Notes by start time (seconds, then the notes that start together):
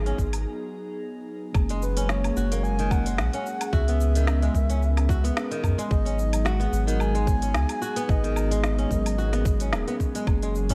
Already playing: G#1 F#3 B3 D#4 G#4 A#5
0.06 C#4, open hi-hat
0.18 G#1, kick, cabasa
0.33 open hi-hat, cabasa, low woodblock
1.52 F#1 F#3 G#3 A#3 C#4 G#4, kick, cabasa, low woodblock
1.69 G#3, open hi-hat
1.82 B4, cabasa
1.97 C#4, open hi-hat, cabasa
2.09 C#5, snare, cabasa
2.24 open hi-hat, low woodblock
2.36 F#1 F#3 G#3 A#3 C#4 F#4, cabasa
2.52 A#3, open hi-hat, cabasa
2.63 G#5, cabasa
2.79 D#3, open hi-hat
2.90 F#3 G#3 A#3 C#4 G#4 F#5, kick, cabasa, low woodblock
3.06 G#3, open hi-hat, cabasa
3.18 A#1, snare, cabasa
3.33 C#4, open hi-hat
3.46 cabasa
3.61 open hi-hat, cabasa, low woodblock
3.72 C#2 G#3 B3 C#4 F#4 G#4 E5, kick, cabasa
3.88 B3, open hi-hat
4.01 cabasa
4.15 D#3, open hi-hat, cabasa
4.27 snare, cabasa, low woodblock
4.42 G#3, open hi-hat
4.53 C#2 G#3 B3 C#4 A#4, kick, cabasa
4.70 C#4, open hi-hat, cabasa
4.82 cabasa
4.97 snare, open hi-hat, low woodblock
5.09 F#4, kick, cabasa
5.24 B3, open hi-hat, cabasa
5.37 snare, cabasa
5.51 D#3, open hi-hat
5.64 F#2, kick, cabasa, low woodblock
5.78 G#3, open hi-hat, cabasa
5.88 G#1 F#3 G#3 B3 D#4 G#4 D#5, kick, cabasa
6.05 C#4, open hi-hat
6.19 cabasa
6.33 open hi-hat, cabasa, low woodblock
6.45 F#4 F#5, snare, cabasa
6.60 B3, open hi-hat
6.72 G#1 F#3 G#3 B3 D#4 F#4, cabasa
6.87 D#3, open hi-hat, cabasa
7.00 G#5, cabasa, low woodblock
7.15 G#3, open hi-hat
7.26 F#3 G#3 B3 D#4 G#4, kick, cabasa
7.42 C#4, open hi-hat, cabasa
7.54 C#2, snare, cabasa
7.69 open hi-hat, low woodblock
7.82 F#4, cabasa
7.96 B3, open hi-hat, cabasa
8.07 G#1 F#3 G#3 B3 C#4 D#4 D#5, kick, cabasa
8.11 G#4
8.24 D#3, open hi-hat
8.36 cabasa, low woodblock
8.51 G#3, open hi-hat, cabasa
8.64 snare, cabasa
8.78 C#4, open hi-hat
8.89 G#1 F#3 G#3 B3 D#4, kick, cabasa
8.93 A#4
9.06 open hi-hat, cabasa, low woodblock
9.18 F#4, cabasa
9.33 B3, snare, open hi-hat
9.45 G#1, kick, cabasa
9.60 C#4, open hi-hat, cabasa
9.73 D#1, snare, cabasa, low woodblock
9.88 B3, open hi-hat
10.00 kick, cabasa
10.15 G#3, open hi-hat, cabasa
10.25 F#1 F#3 G#3 A#3 C#4 G#4, kick, cabasa, low woodblock
10.42 G#3, open hi-hat
10.55 cabasa
10.69 C#4, open hi-hat, frame drum, cabasa